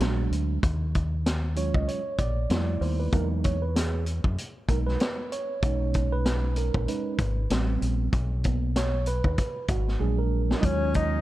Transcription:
0.00 fingered electric bass A#1, tine electric piano F#3 G#3 D4 F#4, snare, closed hi-hat
0.31 fingered electric bass D2, closed hi-hat
0.63 fingered electric bass D#2, kick, closed hi-hat
0.95 kick, closed hi-hat
1.26 snare, closed hi-hat
1.56 tine electric piano F#3 G#3 C#4 F4 C#5, closed hi-hat
1.74 fingered electric bass C#2, tine electric piano D#5, kick
1.88 tine electric piano C#5, closed hi-hat
2.18 fingered electric bass A#1, tine electric piano D5, kick, closed hi-hat
2.50 fingered electric bass F2, tine electric piano G3 A3 B3 E4, snare, closed hi-hat
2.81 fingered electric bass D#2, tine electric piano C5, open hi-hat
3.00 tine electric piano B4
3.12 fingered electric bass E2, tine electric piano F#3 G#3 A#3 D#4 A#4, kick, closed hi-hat
3.44 tine electric piano C#5, kick, closed hi-hat
3.62 tine electric piano B4
3.76 tine electric piano G#4, snare, closed hi-hat
4.06 closed hi-hat
4.24 fingered electric bass F#2, kick
4.38 closed hi-hat
4.68 fingered electric bass B1, tine electric piano F#3 G#3 A#3 D#4 A#4, kick, closed hi-hat
4.87 tine electric piano B4, snare
5.00 snare, closed hi-hat
5.32 tine electric piano C#5, closed hi-hat
5.62 fingered electric bass B1, tine electric piano G#3 C#4 D#4, kick, closed hi-hat
5.94 kick, closed hi-hat
6.13 tine electric piano B4
6.26 snare, closed hi-hat
6.56 tine electric piano A#4, closed hi-hat
6.74 fingered electric bass A#1, kick
6.88 tine electric piano G#3 C#4 D#4 B4, closed hi-hat
7.18 fingered electric bass G#1, kick, closed hi-hat
7.50 fingered electric bass A1, tine electric piano G3 B3 C4, snare, closed hi-hat
7.81 fingered electric bass A#1, closed hi-hat
8.13 fingered electric bass B1, kick, closed hi-hat
8.44 tine electric piano F#3 A#3 B3, kick, closed hi-hat
8.76 tine electric piano C#5, snare, closed hi-hat
9.06 tine electric piano B4, closed hi-hat
9.24 fingered electric bass D#2, kick
9.38 kick, closed hi-hat
9.68 fingered electric bass G#1, tine electric piano F#4, kick, closed hi-hat
9.88 snare
9.99 fingered electric bass A#1, tine electric piano F#3 G#3 D4 G#4
10.19 tine electric piano A#4
10.51 snare
10.56 tenor saxophone D#4, flute D#5
10.61 fingered electric bass D#2, tine electric piano F#3 G#3 A#3 C#4 F4, flute C#5, kick, closed hi-hat
10.65 tenor saxophone C#4
10.94 tenor saxophone D#4, flute D#5, kick, closed hi-hat

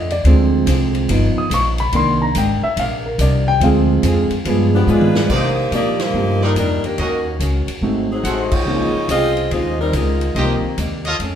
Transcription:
Already playing: upright bass F2, hollow-body jazz guitar A#2 A3 D4 F4, grand piano D#5
0.10 grand piano D5, ride
0.24 upright bass D2, hollow-body jazz guitar D3 G#3 C4 F4, grand piano F3 G#3 C4, ride
0.66 upright bass C2, hollow-body jazz guitar D3 G#3 C4 F4, hi-hat pedal, ride
0.95 ride
1.08 upright bass G1, hollow-body jazz guitar G2 F3 B3 D#4, grand piano F3 B3 D#4, ride
1.35 grand piano D#6, muted upright bass stroke
1.50 upright bass A#1, hollow-body jazz guitar G2 F3 B3 D#4, hi-hat pedal, ride
1.54 grand piano C#6
1.78 grand piano B5, ride
1.92 upright bass C2, hollow-body jazz guitar C3 D#3 A#3 D4, grand piano D#3 A#3 D4 C6, ride
2.22 grand piano A#5
2.35 upright bass G#1, hollow-body jazz guitar C3 D#3 A#3 D4, grand piano G5, hi-hat pedal, ride
2.62 grand piano E5, muted upright bass stroke
2.76 upright bass A#1, hollow-body jazz guitar C3 D#3 A#3, grand piano F5, ride
2.81 hollow-body jazz guitar D4
3.06 grand piano A#4
3.18 upright bass C2, hollow-body jazz guitar C3 D#3 A#3 D4, grand piano D5, hi-hat pedal, ride
3.48 grand piano G5
3.60 upright bass D2, hollow-body jazz guitar D3 C4 F4, grand piano F3 G#3 C4 F5, ride
3.65 hollow-body jazz guitar G#4
4.03 upright bass F2, hollow-body jazz guitar D3 C4 F4, hi-hat pedal, ride
4.07 hollow-body jazz guitar G#4
4.30 muted upright bass stroke, ride
4.45 upright bass G2, grand piano F3 G#3 B3, hollow-body jazz guitar G3 B3 F4, ride
4.49 hollow-body jazz guitar G#4
4.75 saxophone section F3 B3 D4 G4
4.87 upright bass G#2, hollow-body jazz guitar G3 B3 F4 G#4, saxophone section G#3 D4 F4 B4, hi-hat pedal
5.01 high tom
5.15 snare
5.29 upright bass C3, hollow-body jazz guitar C3 D#3 A#3 D4, saxophone section A#3 D#4 G4 C5, trumpet section D#4 A#4 C5 D5, kick, crash
5.71 upright bass A#2, hollow-body jazz guitar C3 D#3 A#3 D4, grand piano F3 A#3 D#4 G4, saxophone section A#3 D#4 G4 D5, hi-hat pedal, ride
5.99 saxophone section A#3 D#4 G4 C5, snare, ride
6.13 upright bass G2, hollow-body jazz guitar C3 D#3 A#3 D4, grand piano F3 A#3 D#4 G4
6.41 saxophone section G3 D4 D#4 A#4, trumpet section D#4 A#4 C5 D5, snare
6.56 upright bass F2, hollow-body jazz guitar C3 D#3 A#3 D4, saxophone section G3 D4 D#4 A#4, hi-hat pedal, ride
6.83 saxophone section D#3 A#3 D4 G4, muted upright bass stroke, ride
6.98 upright bass D#2, hollow-body jazz guitar D#3 A#3 C#4 F#4, saxophone section D#3 A#3 C#4 F#4, trumpet section F#4 A#4 C#5 D#5, ride
7.39 upright bass C#2, hollow-body jazz guitar D#3 A#3 C#4 F#4, hi-hat pedal, ride
7.67 muted upright bass stroke, ride
7.81 upright bass G#1, hollow-body jazz guitar G#2 F#3 A3, grand piano A3 C4 D#4 F#4
7.86 hollow-body jazz guitar C4
8.12 saxophone section F#3 C4 D#4 G#4
8.23 upright bass A1, hollow-body jazz guitar G#2 F#3 A3 C4, saxophone section A3 D#4 F#4 C5, trumpet section G#4 A4 C5 F#5, hi-hat pedal, ride
8.52 saxophone section G#3 D#4 F4 C#5, kick, crash
8.65 upright bass C#2, hollow-body jazz guitar C#3 G3 C4, grand piano F3 A#3 D#4 G#4
8.69 hollow-body jazz guitar F4
8.94 muted upright bass stroke
9.08 upright bass C2, hollow-body jazz guitar C#3 G3 C4 F4, saxophone section C4 F4 G#4 D#5, hi-hat pedal, ride
9.37 ride
9.51 upright bass D#2, hollow-body jazz guitar C#3 G3 C4, saxophone section G#3 D#4 F4 C5, ride
9.55 hollow-body jazz guitar F4
9.81 saxophone section G3 C4 D#4 A#4
9.93 upright bass C#2, hollow-body jazz guitar C#3 G3 C4 F4, saxophone section G#3 D#4 F4 A#4, hi-hat pedal, ride
10.21 ride
10.35 upright bass C2, hollow-body jazz guitar C3 G3 A#3, saxophone section D#3 A#3 G4, grand piano F3 A#3 D#4 G4, trumpet section G4 A#4 C5 D#5, ride
10.39 saxophone section C4, hollow-body jazz guitar D#4
10.62 muted upright bass stroke
10.77 upright bass D#2, hollow-body jazz guitar C3 G3 A#3 D#4, hi-hat pedal, ride
11.05 trumpet section F4 A4 C#5 D#5, ride
11.19 upright bass F2, hollow-body jazz guitar F2 D#3 A3, ride
11.24 hollow-body jazz guitar C#4

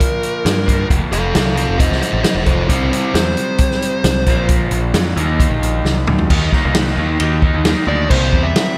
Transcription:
Already playing: overdriven electric guitar A#2 F3 A#3, lead electric guitar A#4
0.00 kick, closed hi-hat
0.23 closed hi-hat
0.45 picked electric bass G2, snare, closed hi-hat
0.67 overdriven electric guitar A#2 F3 A#3, kick, closed hi-hat
0.90 picked electric bass F1, overdriven electric guitar F2 C3 F3, kick, closed hi-hat
1.12 picked electric bass F1, lead electric guitar A4 F5, closed hi-hat
1.35 picked electric bass C2, lead electric guitar A4 F5, snare, closed hi-hat
1.57 lead electric guitar A4 F5, closed hi-hat
1.69 picked electric bass F1
1.79 picked electric bass F1, lead electric guitar C5 D#5, kick, closed hi-hat
1.91 picked electric bass C2, snare
2.02 lead electric guitar C5 D#5, closed hi-hat
2.13 picked electric bass A1
2.23 lead electric guitar C5 D#5, snare, closed hi-hat
2.35 picked electric bass F1
2.45 overdriven electric guitar F2 C3 F3, lead electric guitar A4 C5, kick, closed hi-hat
2.67 picked electric bass C2, overdriven electric guitar C3 G3, lead electric guitar E4 C5, kick, closed hi-hat
2.72 overdriven electric guitar C4
2.91 lead electric guitar E4 C5, closed hi-hat
3.14 picked electric bass E2, lead electric guitar C5, snare, closed hi-hat
3.37 closed hi-hat
3.58 kick, closed hi-hat
3.71 snare
3.82 closed hi-hat
4.04 picked electric bass C2, snare, closed hi-hat
4.26 picked electric bass A#1, overdriven electric guitar A#2 F3 A#3, kick, closed hi-hat
4.49 kick, closed hi-hat
4.71 picked electric bass A#1, closed hi-hat
4.94 picked electric bass F2, snare, closed hi-hat
5.16 picked electric bass D#2, overdriven electric guitar D#3 A#3 D#4, closed hi-hat
5.40 kick, closed hi-hat
5.50 picked electric bass A#1
5.62 picked electric bass A#1, closed hi-hat
5.84 picked electric bass C2, snare
6.07 picked electric bass D2, mid tom
6.18 floor tom
6.30 picked electric bass D#2, overdriven electric guitar D#3 A#3 D#4, kick, crash
6.51 overdriven electric guitar D#3 A#3 D#4, kick, snare
6.65 picked electric bass C2
6.74 overdriven electric guitar D#3 A#3 D#4, snare, ride bell
6.86 snare
6.96 picked electric bass D#2, overdriven electric guitar D#3 A#3 D#4
7.19 picked electric bass D#2, overdriven electric guitar D#3 A#3 D#4, ride bell
7.42 overdriven electric guitar D#3 A#3 D#4, kick
7.54 picked electric bass D#2
7.63 overdriven electric guitar D#3 A#3 D#4, snare, ride bell
7.86 picked electric bass D2, overdriven electric guitar D#3 A#3 D#4, lead electric guitar D5
8.09 picked electric bass C2, overdriven electric guitar C3 G3 C4, lead electric guitar C5, kick, crash
8.33 picked electric bass E2, kick
8.43 lead electric guitar E5
8.56 snare, ride bell

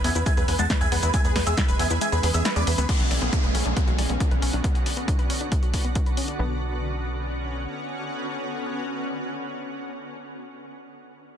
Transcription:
Already playing: ambient pad E3 G#3 B3 G#4
0.04 analog synth bass E2, synth pluck B3, supersaw synth E5 G#5, grand piano G#6, open hi-hat
0.15 analog synth bass E2, synth pluck E4, supersaw synth B4, grand piano B5, closed hi-hat, shaker
0.26 synth pluck G#3, supersaw synth E5 G#5, grand piano G#6, kick, closed hi-hat, shaker
0.37 analog synth bass E2, synth pluck G#4, supersaw synth B4, grand piano B5, closed hi-hat, shaker
0.48 analog synth bass E2, supersaw synth B4, synth pluck G#5, grand piano B5, open hi-hat
0.59 analog synth bass E2, synth pluck G#3, supersaw synth F#5 A5, grand piano A6, closed hi-hat, shaker
0.70 synth pluck E4, supersaw synth B4, grand piano B5, kick, snare, closed hi-hat, shaker
0.81 analog synth bass E2, synth pluck B4, supersaw synth E5 G#5, grand piano G#6, closed hi-hat, shaker
0.92 analog synth bass E2, synth pluck B3, supersaw synth B4, grand piano B5, open hi-hat
1.03 analog synth bass E2, synth pluck E4, supersaw synth B4, grand piano B5, closed hi-hat, shaker
1.14 synth pluck G#3, ambient pad C#4, supersaw synth E5 G#5, grand piano G#6, kick, closed hi-hat, shaker
1.25 analog synth bass E2, synth pluck G#4, supersaw synth B4, grand piano B5, closed hi-hat, shaker
1.36 analog synth bass E2, supersaw synth B4, synth pluck G#5, grand piano B5, snare, open hi-hat
1.47 analog synth bass E2, synth pluck G#3, supersaw synth G#4 E5, grand piano E6, closed hi-hat, shaker
1.57 synth pluck E4, supersaw synth B4, grand piano B5, kick, snare, closed hi-hat, shaker
1.68 analog synth bass E1, synth pluck B4, supersaw synth B4, grand piano B5, closed hi-hat, shaker
1.79 analog synth bass E2, synth pluck B3, supersaw synth E5 G#5, grand piano G#6, open hi-hat
1.90 analog synth bass E2, synth pluck E4, supersaw synth B4, grand piano B5, closed hi-hat, shaker
2.01 synth pluck G#3, supersaw synth E5 G#5, grand piano G#6, closed hi-hat, shaker
2.12 analog synth bass E2, synth pluck G#4, supersaw synth B4, grand piano B5, closed hi-hat, shaker
2.23 analog synth bass E2, synth pluck G#4, supersaw synth B4, grand piano B5, open hi-hat
2.34 analog synth bass E2, synth pluck B3, supersaw synth G#4 E5, grand piano E6, closed hi-hat, shaker
2.45 synth pluck E4, supersaw synth B4, grand piano B5, snare, closed hi-hat, shaker
2.56 analog synth bass E2, synth pluck G#3, supersaw synth B4 D5, grand piano D6, closed hi-hat, shaker
2.67 analog synth bass E2, supersaw synth B4, synth pluck E5, grand piano B5, open hi-hat
2.78 analog synth bass D2, synth pluck B3, supersaw synth B4, grand piano B5, closed hi-hat, shaker
2.89 ambient pad D3 B3 C#4 F#4, synth pluck B3, kick, closed hi-hat, crash, downlifter
3.00 analog synth bass B1, synth pluck F#4, closed hi-hat
3.11 analog synth bass B1, synth pluck D5, open hi-hat
3.22 analog synth bass B1, synth pluck B3, closed hi-hat
3.33 synth pluck D4, kick, closed hi-hat
3.44 analog synth bass F#1, synth pluck B4, closed hi-hat
3.55 analog synth bass B1, synth pluck C#4, open hi-hat
3.66 analog synth bass B1, synth pluck D4, closed hi-hat
3.77 synth pluck B3, kick, closed hi-hat
3.88 analog synth bass B1, synth pluck F#4, closed hi-hat
3.98 analog synth bass B1, synth pluck D5, open hi-hat
4.09 analog synth bass B1, synth pluck B3, closed hi-hat
4.20 synth pluck D4, kick, closed hi-hat
4.31 analog synth bass B1, synth pluck B4, closed hi-hat
4.42 analog synth bass B1, synth pluck C#4, open hi-hat
4.53 analog synth bass B1, synth pluck D4, closed hi-hat
4.64 synth pluck B3, ambient pad D4, kick, closed hi-hat
4.75 synth pluck F#4, closed hi-hat
4.86 synth pluck D5, open hi-hat
4.97 synth pluck B3, closed hi-hat
5.08 synth pluck D4, kick, closed hi-hat
5.19 synth pluck B4, closed hi-hat
5.30 synth pluck C#4, open hi-hat
5.41 synth pluck D4, closed hi-hat
5.52 synth pluck B3, kick, closed hi-hat
5.63 synth pluck F#4, closed hi-hat
5.74 synth pluck D5, kick, open hi-hat
5.84 synth pluck B3, closed hi-hat
5.95 synth pluck D4, kick, closed hi-hat
6.06 synth pluck B4, closed hi-hat
6.17 synth pluck C#4, open hi-hat
6.28 synth pluck D4, closed hi-hat
6.39 analog synth bass B1, ambient pad D3 B3 C#4 F#4, synth pluck B3

